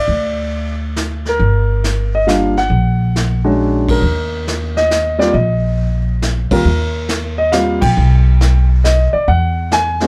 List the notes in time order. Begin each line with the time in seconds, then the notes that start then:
Already playing: D5
0.08 D2, brush sweep
0.96 snare, hi-hat pedal
1.25 A#4, snare
1.39 G1, brush sweep
1.84 snare, hi-hat pedal
2.15 D#5
2.27 G3 A#3 D4 F4 F5, snare, hi-hat pedal
2.57 F#5, snare
2.70 A#1, brush sweep
3.16 snare, hi-hat pedal
3.44 G#3 C#4 D4 F#4
3.89 A#4, kick, ride
4.02 D#2, brush sweep
4.47 snare, hi-hat pedal
4.77 D#5, snare
4.91 snare, hi-hat pedal
5.18 G3 A#3 C4 F4 D5, snare
5.33 A#1 D#5, brush sweep
6.22 snare, hi-hat pedal
6.51 D#2 G3 A#3 C4 F4 A#4, muted upright bass stroke, kick, ride
6.65 D#2, brush sweep
7.09 snare, hi-hat pedal
7.38 D#5
7.52 G3 A#3 C4 F4 F5, snare, hi-hat pedal
7.81 A#1 G5, kick, crash
7.97 B1, brush sweep
8.41 snare, hi-hat pedal
8.84 D#5, snare, hi-hat pedal
9.13 D5, muted upright bass stroke
9.28 E2 F#5, brush sweep
9.71 G#5, snare, hi-hat pedal
10.00 G#3 B3 C#4 F#4, snare